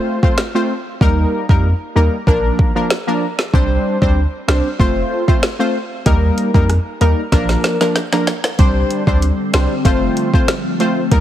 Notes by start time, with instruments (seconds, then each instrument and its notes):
Already playing: synth stab A3 C4 F4 C5
0.23 synth stab A3 C4 F4 C5, kick
0.38 snare
0.55 synth stab A3 C4 F4 C5
1.01 sub bass D#2, synth stab G3 A#3 D#4 A#4, kick
1.49 sub bass F2, synth stab G3 A#3 D#4 A#4, kick
1.95 sub bass D#2, synth stab G3 A#3 D#4 A#4
2.27 sub bass A#1, synth stab F3 A#3 D4 A#4, kick
2.59 kick
2.75 synth stab F3 A#3 D4 A#4
2.90 snare
3.07 synth stab F3 A#3 D4 A#4
3.39 snare
3.53 sub bass C2, synth stab G3 C4 D4 C5, kick
4.01 sub bass D2, synth stab G3 C4 D4 C5, kick
4.48 sub bass C2, synth stab G3 C4 D4 C5, snare
4.79 sub bass F1, synth stab A3 C4 F4 C5, kick
5.28 synth stab A3 C4 F4 C5, kick
5.43 snare
5.59 synth stab A3 C4 F4 C5
6.06 sub bass D#2, synth stab G3 A#3 D#4 A#4, kick, closed hi-hat
6.38 closed hi-hat
6.54 sub bass F2, synth stab G3 A#3 D#4 A#4, kick
6.70 cross-stick, closed hi-hat
7.01 sub bass D#2, synth stab G3 A#3 D#4 A#4, closed hi-hat
7.32 sub bass A#1, synth stab F3 A#3 D4 A#4, kick, snare, closed hi-hat
7.49 snare
7.64 snare, closed hi-hat
7.81 synth stab F3 A#3 D4 A#4, snare
7.96 snare, closed hi-hat
8.12 synth stab F3 A#3 D4 A#4, snare
8.27 snare, closed hi-hat
8.44 snare
8.59 sub bass C2, synth stab G3 C4 D4 C5, ambient pad C4, kick, closed hi-hat
8.91 closed hi-hat
9.07 sub bass D2, synth stab G3 C4 D4 C5, kick
9.22 closed hi-hat
9.53 sub bass C2, synth stab G3 C4 D4 C5, snare, closed hi-hat
9.85 sub bass F1, synth stab A3 C4 F4 C5, kick, closed hi-hat
10.17 closed hi-hat
10.34 synth stab A3 C4 F4 C5, kick
10.48 snare, closed hi-hat
10.80 synth stab A3 C4 F4 C5, closed hi-hat
11.11 sub bass D#2, synth stab G3 A#3 D#4 A#4, kick, closed hi-hat